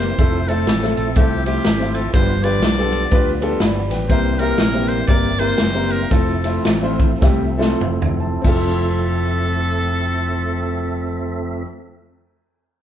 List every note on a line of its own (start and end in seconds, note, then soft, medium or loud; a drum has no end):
0.00 0.11 F#1 medium
0.00 0.17 E3 medium
0.00 0.15 G3 medium
0.00 0.17 A#3 medium
0.00 0.17 C4 medium
0.00 0.15 G4 medium
0.00 0.50 C5 medium
0.18 0.68 F1 loud
0.18 2.12 F3 medium
0.18 2.12 A3 medium
0.18 0.35 A3 medium
0.18 2.12 C4 medium
0.18 0.36 C4 medium
0.18 2.12 E4 medium
0.18 0.36 E4 medium
0.18 0.36 F4 medium
0.18 2.12 A4 medium
0.18 0.36 A4 medium
0.18 kick loud
0.18 ride medium
0.48 0.64 A3 medium
0.48 0.65 C4 medium
0.48 0.65 E4 medium
0.48 0.65 F4 medium
0.48 0.96 A4 loud
0.48 0.65 A4 medium
0.48 ride medium
0.67 0.93 A1 medium
0.67 snare loud
0.67 ride medium
0.82 1.04 A3 medium
0.82 1.04 C4 medium
0.82 1.04 E4 medium
0.82 1.04 F4 medium
0.82 1.05 A4 medium
0.82 snare soft
0.96 1.14 A#1 medium
0.96 1.18 A4 medium
0.96 ride medium
1.16 1.58 C2 medium
1.16 1.33 A3 medium
1.16 1.33 C4 medium
1.16 1.34 E4 medium
1.16 1.34 F4 medium
1.16 1.45 G4 medium
1.16 1.34 A4 medium
1.16 kick loud
1.16 ride medium
1.45 1.62 A3 medium
1.45 1.62 C4 medium
1.45 1.62 E4 medium
1.45 1.63 F4 medium
1.45 1.97 G4 loud
1.45 1.63 G4 medium
1.45 ride medium
1.64 2.07 G#1 loud
1.64 snare loud
1.64 ride medium
1.79 2.01 A3 medium
1.79 2.01 C4 medium
1.79 2.02 E4 medium
1.79 2.02 F4 medium
1.79 2.02 C5 medium
1.95 2.13 A4 medium
1.95 ride medium
2.13 2.63 G1 loud
2.13 2.89 G2 medium
2.13 4.07 F3 medium
2.13 4.07 G3 medium
2.13 2.31 B3 medium
2.13 4.08 B3 medium
2.13 4.07 D4 medium
2.13 2.31 D4 medium
2.13 2.31 F4 medium
2.13 6.07 G4 medium
2.13 2.31 G4 medium
2.13 2.32 B4 medium
2.13 2.45 C5 loud
2.13 kick loud
2.13 ride medium
2.43 2.60 B3 medium
2.43 2.60 D4 medium
2.43 2.60 F4 medium
2.43 2.60 G4 medium
2.43 2.61 B4 medium
2.43 3.42 D5 loud
2.43 ride medium
2.62 3.04 B1 medium
2.62 snare loud
2.62 ride medium
2.78 3.00 B3 medium
2.78 3.00 D4 medium
2.78 3.00 F4 medium
2.78 3.00 G4 medium
2.78 3.00 A4 medium
2.93 ride medium
3.11 3.53 D2 loud
3.11 3.29 B3 medium
3.11 3.29 D4 medium
3.11 3.29 F4 medium
3.11 3.29 G4 medium
3.11 3.30 B4 loud
3.11 kick loud
3.11 ride medium
3.41 3.58 B3 medium
3.41 3.58 D4 medium
3.41 3.58 F4 medium
3.41 3.58 G4 medium
3.41 3.59 A4 medium
3.41 ride medium
3.60 3.91 G1 loud
3.60 3.90 D5 medium
3.60 3.89 B5 medium
3.60 snare loud
3.60 ride medium
3.91 4.07 A1 medium
3.91 4.37 B4 medium
3.91 4.37 G5 medium
3.91 snare soft
3.91 ride medium
4.09 4.51 C2 loud
4.09 4.85 C3 medium
4.09 6.09 E3 medium
4.09 6.09 G3 medium
4.09 4.26 A#3 medium
4.09 6.10 A#3 medium
4.09 4.27 C4 medium
4.09 8.41 C4 medium
4.09 4.27 E4 medium
4.09 4.27 G4 medium
4.09 4.27 A#4 medium
4.09 4.40 C5 loud
4.09 kick medium
4.09 ride medium
4.39 4.56 A#3 medium
4.39 4.56 C4 medium
4.39 4.56 E4 medium
4.39 4.56 G4 medium
4.39 4.90 A#4 loud
4.39 4.56 A#4 medium
4.39 ride medium
4.58 5.01 A#1 loud
4.58 snare loud
4.58 ride medium
4.73 4.96 A#3 medium
4.73 4.96 C4 medium
4.73 4.96 E4 medium
4.73 4.96 G4 medium
4.73 4.96 A#4 medium
4.88 5.07 C5 medium
4.88 ride medium
5.07 5.52 G1 loud
5.07 5.26 A#3 medium
5.07 5.26 C4 medium
5.07 5.26 E4 medium
5.07 5.26 G4 medium
5.07 5.27 A#4 medium
5.07 5.41 D5 loud
5.07 kick loud
5.07 ride medium
5.38 5.56 A#3 medium
5.38 5.56 C4 medium
5.38 5.56 E4 medium
5.38 5.57 G4 medium
5.38 5.57 A#4 medium
5.38 5.93 C5 loud
5.38 ride medium
5.58 6.04 F#1 medium
5.58 snare loud
5.58 ride loud
5.74 5.98 A#3 medium
5.74 5.98 C4 medium
5.74 5.98 E4 medium
5.74 5.98 G4 medium
5.74 5.99 A#4 medium
5.90 6.13 A#4 loud
5.90 ride medium
6.10 6.58 F1 loud
6.10 8.43 F3 medium
6.10 6.30 A3 medium
6.10 8.43 A3 medium
6.10 6.30 C4 medium
6.10 6.30 E4 medium
6.10 8.43 E4 medium
6.10 6.30 F4 medium
6.10 6.66 A4 medium
6.10 6.30 A4 medium
6.10 8.43 A4 medium
6.10 kick medium
6.10 ride medium
6.44 6.62 A3 medium
6.44 6.62 C4 medium
6.44 6.63 E4 medium
6.44 6.63 F4 medium
6.44 6.63 C5 medium
6.44 ride medium
6.65 7.14 A1 medium
6.65 snare loud
6.65 ride medium
6.82 7.08 A3 medium
6.82 7.08 C4 medium
6.82 7.08 E4 medium
6.82 7.08 F4 medium
6.82 7.08 C5 medium
6.99 kick loud
6.99 ride medium
7.22 7.73 C2 loud
7.22 7.42 A3 medium
7.22 7.42 C4 medium
7.22 7.43 E4 medium
7.22 7.43 F4 medium
7.22 7.43 G4 loud
7.22 kick loud
7.22 snare medium
7.58 7.78 A3 medium
7.58 7.78 C4 medium
7.58 7.79 E4 medium
7.58 7.79 F4 medium
7.58 7.79 A4 medium
7.58 snare medium
7.81 8.35 F1 medium
7.81 8.19 E4 medium
7.81 mid tom medium
8.02 floor tom loud
8.20 8.82 C5 medium
8.20 8.82 A5 medium
8.41 11.63 F1 loud
8.41 11.64 F2 medium
8.41 11.63 F3 medium
8.41 11.63 A3 medium
8.41 11.60 C4 medium
8.41 11.63 C4 medium
8.41 11.62 E4 medium
8.41 11.63 A4 medium
8.41 11.63 E5 medium
8.41 kick loud
8.41 crash medium
8.45 11.65 F4 medium
8.45 11.64 A4 loud
8.45 11.67 A4 medium